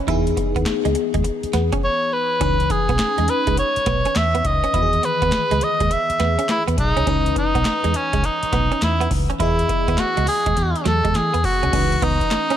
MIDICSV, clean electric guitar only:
0, 0, Header, 1, 3, 480
1, 0, Start_track
1, 0, Key_signature, 4, "minor"
1, 0, Tempo, 582524
1, 65, Time_signature, 4, 2, 24, 8
1, 10357, End_track
2, 0, Start_track
2, 0, Title_t, "Clean electric guitar"
2, 0, Program_c, 0, 27
2, 65, Note_on_c, 0, 64, 80
2, 189, Note_off_c, 0, 64, 0
2, 461, Note_on_c, 0, 59, 73
2, 527, Note_off_c, 0, 59, 0
2, 701, Note_on_c, 0, 56, 71
2, 767, Note_off_c, 0, 56, 0
2, 941, Note_on_c, 0, 56, 65
2, 1008, Note_off_c, 0, 56, 0
2, 1265, Note_on_c, 0, 59, 72
2, 1389, Note_off_c, 0, 59, 0
2, 1422, Note_on_c, 0, 61, 80
2, 1488, Note_off_c, 0, 61, 0
2, 1985, Note_on_c, 0, 61, 87
2, 2109, Note_off_c, 0, 61, 0
2, 2383, Note_on_c, 0, 59, 77
2, 2449, Note_off_c, 0, 59, 0
2, 2622, Note_on_c, 0, 56, 73
2, 2688, Note_off_c, 0, 56, 0
2, 2861, Note_on_c, 0, 56, 68
2, 2928, Note_off_c, 0, 56, 0
2, 3186, Note_on_c, 0, 59, 75
2, 3310, Note_off_c, 0, 59, 0
2, 3343, Note_on_c, 0, 61, 82
2, 3408, Note_off_c, 0, 61, 0
2, 3582, Note_on_c, 0, 59, 78
2, 3648, Note_off_c, 0, 59, 0
2, 3821, Note_on_c, 0, 61, 75
2, 3887, Note_off_c, 0, 61, 0
2, 3905, Note_on_c, 0, 64, 76
2, 4029, Note_off_c, 0, 64, 0
2, 4302, Note_on_c, 0, 59, 81
2, 4368, Note_off_c, 0, 59, 0
2, 4543, Note_on_c, 0, 56, 75
2, 4608, Note_off_c, 0, 56, 0
2, 4784, Note_on_c, 0, 56, 71
2, 4849, Note_off_c, 0, 56, 0
2, 5106, Note_on_c, 0, 59, 71
2, 5229, Note_off_c, 0, 59, 0
2, 5262, Note_on_c, 0, 61, 77
2, 5328, Note_off_c, 0, 61, 0
2, 5501, Note_on_c, 0, 59, 78
2, 5567, Note_off_c, 0, 59, 0
2, 5740, Note_on_c, 0, 61, 73
2, 5806, Note_off_c, 0, 61, 0
2, 5824, Note_on_c, 0, 61, 78
2, 5948, Note_off_c, 0, 61, 0
2, 6221, Note_on_c, 0, 59, 80
2, 6287, Note_off_c, 0, 59, 0
2, 6461, Note_on_c, 0, 56, 72
2, 6527, Note_off_c, 0, 56, 0
2, 6702, Note_on_c, 0, 56, 70
2, 6768, Note_off_c, 0, 56, 0
2, 7026, Note_on_c, 0, 59, 71
2, 7149, Note_off_c, 0, 59, 0
2, 7182, Note_on_c, 0, 61, 82
2, 7248, Note_off_c, 0, 61, 0
2, 7420, Note_on_c, 0, 59, 79
2, 7487, Note_off_c, 0, 59, 0
2, 7661, Note_on_c, 0, 61, 67
2, 7727, Note_off_c, 0, 61, 0
2, 7744, Note_on_c, 0, 64, 82
2, 7868, Note_off_c, 0, 64, 0
2, 8143, Note_on_c, 0, 59, 80
2, 8209, Note_off_c, 0, 59, 0
2, 8383, Note_on_c, 0, 56, 73
2, 8448, Note_off_c, 0, 56, 0
2, 8622, Note_on_c, 0, 56, 68
2, 8688, Note_off_c, 0, 56, 0
2, 8944, Note_on_c, 0, 54, 73
2, 9068, Note_off_c, 0, 54, 0
2, 9101, Note_on_c, 0, 56, 81
2, 9168, Note_off_c, 0, 56, 0
2, 9341, Note_on_c, 0, 59, 72
2, 9407, Note_off_c, 0, 59, 0
2, 9583, Note_on_c, 0, 61, 69
2, 9648, Note_off_c, 0, 61, 0
2, 9665, Note_on_c, 0, 61, 84
2, 9789, Note_off_c, 0, 61, 0
2, 9907, Note_on_c, 0, 59, 84
2, 10030, Note_off_c, 0, 59, 0
2, 10304, Note_on_c, 0, 61, 75
2, 10357, Note_off_c, 0, 61, 0
2, 10357, End_track
3, 0, Start_track
3, 0, Title_t, "Muted clean electric guitar strokes"
3, 304, Note_on_c, 9, 29, 44
3, 387, Note_off_c, 9, 29, 0
3, 785, Note_on_c, 9, 29, 43
3, 868, Note_off_c, 9, 29, 0
3, 1024, Note_on_c, 9, 29, 45
3, 1106, Note_off_c, 9, 29, 0
3, 2226, Note_on_c, 9, 29, 46
3, 2309, Note_off_c, 9, 29, 0
3, 2706, Note_on_c, 9, 29, 46
3, 2788, Note_off_c, 9, 29, 0
3, 2946, Note_on_c, 9, 29, 42
3, 3029, Note_off_c, 9, 29, 0
3, 3665, Note_on_c, 9, 29, 45
3, 3748, Note_off_c, 9, 29, 0
3, 4147, Note_on_c, 9, 29, 49
3, 4229, Note_off_c, 9, 29, 0
3, 4626, Note_on_c, 9, 29, 42
3, 4709, Note_off_c, 9, 29, 0
3, 4866, Note_on_c, 9, 29, 44
3, 4948, Note_off_c, 9, 29, 0
3, 5583, Note_on_c, 9, 29, 45
3, 5665, Note_off_c, 9, 29, 0
3, 6064, Note_on_c, 9, 29, 43
3, 6147, Note_off_c, 9, 29, 0
3, 6546, Note_on_c, 9, 29, 44
3, 6628, Note_off_c, 9, 29, 0
3, 6785, Note_on_c, 9, 29, 43
3, 6867, Note_off_c, 9, 29, 0
3, 7504, Note_on_c, 9, 29, 47
3, 7587, Note_off_c, 9, 29, 0
3, 7986, Note_on_c, 9, 29, 42
3, 8068, Note_off_c, 9, 29, 0
3, 8465, Note_on_c, 9, 29, 43
3, 8547, Note_off_c, 9, 29, 0
3, 8706, Note_on_c, 9, 29, 45
3, 8788, Note_off_c, 9, 29, 0
3, 9426, Note_on_c, 9, 29, 46
3, 9508, Note_off_c, 9, 29, 0
3, 9824, Note_on_c, 9, 29, 42
3, 9906, Note_off_c, 9, 29, 0
3, 10146, Note_on_c, 9, 29, 45
3, 10228, Note_off_c, 9, 29, 0
3, 10357, End_track
0, 0, End_of_file